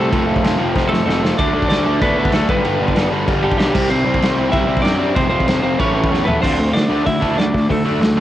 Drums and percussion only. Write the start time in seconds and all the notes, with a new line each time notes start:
0.13 kick, crash
0.36 kick
0.44 snare, crash
0.76 kick, snare
0.93 snare
1.09 snare
1.25 snare
1.39 kick, crash
1.62 kick
1.71 snare, crash
2.02 kick, crash
2.25 kick
2.32 snare, crash
2.49 kick
2.65 crash
2.88 kick
2.96 snare, crash
3.28 kick, crash
3.51 kick
3.59 snare, crash
3.75 kick, crash
3.91 crash
4.14 kick
4.22 snare, crash
4.53 kick, crash
4.77 kick
4.85 snare, crash
5.16 kick, crash
5.40 kick
5.48 snare, crash
5.80 kick, crash
6.04 kick
6.14 snare
6.28 floor tom
6.44 kick, crash
6.76 snare, open hi-hat
7.07 kick, open hi-hat
7.23 kick
7.39 snare, open hi-hat
7.55 kick
7.70 kick, open hi-hat
8.02 snare, open hi-hat